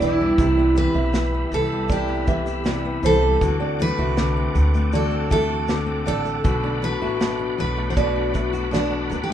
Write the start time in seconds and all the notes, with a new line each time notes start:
Already playing: E2 G3 D4 E4 G4 E5 B5 D6
0.00 B1 E3 E4 D5, shaker
0.21 G3
0.38 C2 C3 E4, kick, shaker
0.57 B3 D5
0.76 E3 B4, shaker
0.94 B1 E4 E5
1.14 snare, shaker
1.34 B3
1.52 C2 E3 A4, shaker
1.72 G3
1.89 C3 E4 G4 D5, kick, shaker
2.08 B3
2.27 E3 E5, kick, shaker
2.46 E4, shaker
2.65 C3 D5, snare, shaker
2.85 B3
3.03 C2 E3 A4 C5, shaker
3.22 G3
3.41 D2 D3 F#4 A4 F#5 D6, kick, shaker
3.60 C4 D5
3.79 A3 B4, shaker
3.98 C2 F#4 E5
4.17 D3, snare, shaker
4.37 C4
4.55 D2 A3, shaker
4.74 A3, shaker
4.93 D3 F#4 A4 D5, shaker
5.11 C4
5.30 A3 A4 E5, kick, shaker
5.49 F#4
5.68 D3, snare, shaker
5.86 C4
6.06 A1 A3 A4 D5, snare, shaker
6.25 A3, shaker
6.44 B1 B2 F#4 A4 B5 D6, kick, shaker
6.64 D4 D5
6.82 F#3 B4, shaker
7.01 A1 F#4 E5
7.21 B2, snare, shaker
7.39 D4
7.58 B1 F#3 B4, shaker
7.77 A3
7.90 C5
7.96 B2 F#4 B4 D5, kick, shaker
8.16 D4
8.34 F#3 E5, kick, shaker
8.53 F#4, shaker
8.71 B2 D4 D5, snare, shaker
8.90 D4
9.10 D2 F#3 B4, shaker
9.23 G4
9.30 A3